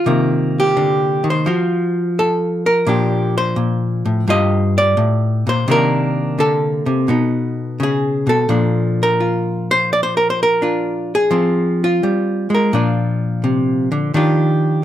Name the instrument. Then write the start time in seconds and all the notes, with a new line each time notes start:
hollow-body jazz guitar
Already playing: F4
0.06 C3 D#3 A#3
0.60 G4
0.77 D3
1.24 D#3
1.30 C5
1.46 F3 F4 F#4
2.19 A4
2.66 A#4
2.87 A#2 F3 D4 G4
3.38 C5
3.56 A#2
4.05 A2
4.28 G2 F4 G4 D#5
4.78 D5
4.97 A2
5.47 A#2 C5
5.68 C3 D#3 A#3 D4 A#4
6.38 D3 A4
6.86 C3
7.08 B2 B3 D#4
7.80 C#3 G#4
8.27 B2 A4
8.49 A#2 F3 D4
9.03 A#4
9.20 F4
9.71 C5
9.93 D5
10.03 C5
10.17 A#4
10.30 C5
10.43 A#4
10.62 D4 F4
11.15 G#4
11.31 F3 C4
11.84 F4
12.03 G3
12.50 G#3
12.54 A#4
12.73 A#2 F3 D4 F4
13.44 C3
13.92 D3
14.14 D#3 D4 F4 G4